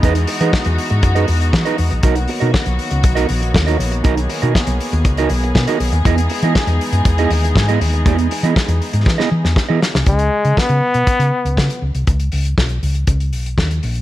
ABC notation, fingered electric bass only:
X:1
M:4/4
L:1/16
Q:1/4=120
K:Elyd
V:1 name="Fingered electric bass" clef=bass
E,,2 z E, z E,, z G,, F,,2 E,,2 E, z E,, A,,, | B,,,2 z B,, z B,,, z C,, B,,,2 A,,,2 D,,2 A,,,2 | B,,,2 z B,, z B,,, z D,, C,,2 B,,,2 B,, z B,,, D,, | E,,2 z E, z E,, z F,, E,,2 D,,2 G,,2 D,,2 |
E,,2 z E, z E,, z G,, E, z E, E,, z E, z =C,, | C,,2 z C, z C, z B,, z C, z C,, C, z C,, =C,, | C,,2 C,,2 B,,,2 C,,2 C,,2 B,,,2 D,,2 A,,,2 |]